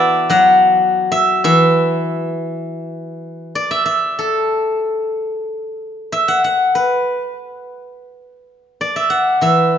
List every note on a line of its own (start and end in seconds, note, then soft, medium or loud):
0.00 0.80 E3 medium
0.00 0.33 B3 medium
0.00 0.49 E4 medium
0.00 0.65 F#4 medium
0.00 0.81 B4 medium
0.00 1.70 D5 medium
0.00 1.11 E5 medium
0.00 0.30 F#5 medium
0.00 1.20 A5 medium
0.00 1.07 B5 medium
0.00 0.91 D6 soft
0.30 2.32 F#3 medium
0.30 1.91 F#5 medium
1.12 1.44 E5 medium
1.44 3.52 E3 medium
1.44 3.17 E5 loud
3.55 5.40 D5 medium
3.71 3.85 E5 medium
3.86 5.58 E5 medium
4.19 6.38 A4 medium
6.12 7.85 E5 medium
6.28 6.44 F#5 medium
6.44 8.05 F#5 medium
6.75 8.80 B4 medium
8.81 9.78 D5 medium
8.96 9.42 E5 medium
9.10 9.78 F#5 medium
9.41 9.78 E3 soft
9.41 9.78 E5 medium